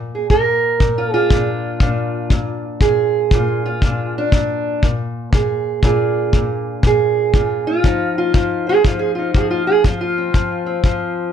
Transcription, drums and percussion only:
0.30 kick
0.80 kick
1.30 kick
1.80 kick
2.30 kick
2.81 kick
3.31 kick
3.82 kick
4.32 kick
4.83 kick
5.33 kick
5.83 kick
6.33 kick
6.83 kick
7.34 kick
7.84 kick
8.34 kick
8.84 kick
9.34 kick
9.84 kick
10.34 kick
10.84 kick

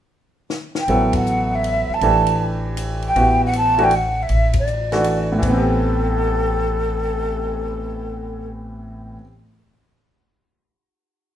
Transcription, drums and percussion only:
0.50 snare
0.75 snare
0.88 ride
1.13 kick, ride
1.26 hi-hat pedal
1.64 ride
2.01 ride
2.27 ride
2.77 hi-hat pedal, ride
3.02 ride
3.16 ride
3.53 hi-hat pedal, ride
3.78 ride
3.91 ride
4.29 ride
4.53 kick, ride
4.67 hi-hat pedal
4.92 snare, ride
5.04 ride
5.43 kick, crash
5.68 cymbal swell

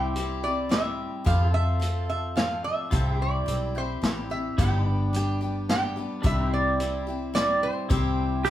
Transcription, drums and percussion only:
0.16 closed hi-hat
0.71 snare, closed hi-hat
1.26 kick, closed hi-hat
1.82 closed hi-hat
2.37 snare, closed hi-hat
2.92 kick, closed hi-hat
3.48 closed hi-hat
4.03 snare, closed hi-hat
4.58 kick, closed hi-hat
5.14 closed hi-hat
5.69 snare, closed hi-hat
6.24 kick, closed hi-hat
6.80 closed hi-hat
7.35 snare, closed hi-hat
7.90 kick, closed hi-hat
8.45 closed hi-hat

